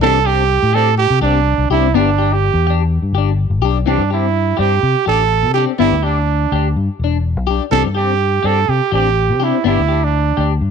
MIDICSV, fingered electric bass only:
0, 0, Header, 1, 2, 480
1, 0, Start_track
1, 0, Key_signature, 0, "major"
1, 0, Tempo, 481155
1, 28, Time_signature, 4, 2, 24, 8
1, 10680, End_track
2, 0, Start_track
2, 0, Title_t, "Fingered electric bass"
2, 0, Program_c, 0, 33
2, 24, Note_on_c, 0, 36, 88
2, 567, Note_off_c, 0, 36, 0
2, 625, Note_on_c, 0, 45, 91
2, 1056, Note_off_c, 0, 45, 0
2, 1100, Note_on_c, 0, 48, 72
2, 1206, Note_off_c, 0, 48, 0
2, 1212, Note_on_c, 0, 36, 82
2, 1544, Note_off_c, 0, 36, 0
2, 1574, Note_on_c, 0, 36, 84
2, 1681, Note_off_c, 0, 36, 0
2, 1693, Note_on_c, 0, 36, 78
2, 1910, Note_off_c, 0, 36, 0
2, 1935, Note_on_c, 0, 31, 79
2, 2479, Note_off_c, 0, 31, 0
2, 2531, Note_on_c, 0, 40, 86
2, 2966, Note_off_c, 0, 40, 0
2, 3017, Note_on_c, 0, 43, 70
2, 3114, Note_off_c, 0, 43, 0
2, 3120, Note_on_c, 0, 31, 80
2, 3455, Note_off_c, 0, 31, 0
2, 3491, Note_on_c, 0, 31, 84
2, 3604, Note_off_c, 0, 31, 0
2, 3604, Note_on_c, 0, 35, 78
2, 3824, Note_off_c, 0, 35, 0
2, 3845, Note_on_c, 0, 36, 70
2, 3963, Note_off_c, 0, 36, 0
2, 3974, Note_on_c, 0, 43, 72
2, 4510, Note_off_c, 0, 43, 0
2, 4577, Note_on_c, 0, 43, 73
2, 4792, Note_off_c, 0, 43, 0
2, 4817, Note_on_c, 0, 48, 92
2, 4930, Note_off_c, 0, 48, 0
2, 5058, Note_on_c, 0, 33, 67
2, 5419, Note_on_c, 0, 48, 75
2, 5434, Note_off_c, 0, 33, 0
2, 5636, Note_off_c, 0, 48, 0
2, 5783, Note_on_c, 0, 31, 75
2, 5894, Note_off_c, 0, 31, 0
2, 5903, Note_on_c, 0, 38, 66
2, 6437, Note_off_c, 0, 38, 0
2, 6503, Note_on_c, 0, 38, 78
2, 6717, Note_off_c, 0, 38, 0
2, 6747, Note_on_c, 0, 43, 97
2, 6857, Note_off_c, 0, 43, 0
2, 6978, Note_on_c, 0, 28, 70
2, 7351, Note_off_c, 0, 28, 0
2, 7351, Note_on_c, 0, 35, 85
2, 7564, Note_off_c, 0, 35, 0
2, 7699, Note_on_c, 0, 36, 77
2, 7813, Note_off_c, 0, 36, 0
2, 7832, Note_on_c, 0, 43, 67
2, 8363, Note_off_c, 0, 43, 0
2, 8420, Note_on_c, 0, 43, 78
2, 8637, Note_off_c, 0, 43, 0
2, 8665, Note_on_c, 0, 48, 93
2, 8777, Note_off_c, 0, 48, 0
2, 8901, Note_on_c, 0, 33, 75
2, 9274, Note_on_c, 0, 48, 79
2, 9289, Note_off_c, 0, 33, 0
2, 9488, Note_off_c, 0, 48, 0
2, 9625, Note_on_c, 0, 31, 71
2, 9738, Note_off_c, 0, 31, 0
2, 9756, Note_on_c, 0, 38, 67
2, 10287, Note_off_c, 0, 38, 0
2, 10352, Note_on_c, 0, 38, 78
2, 10564, Note_off_c, 0, 38, 0
2, 10586, Note_on_c, 0, 43, 89
2, 10680, Note_off_c, 0, 43, 0
2, 10680, End_track
0, 0, End_of_file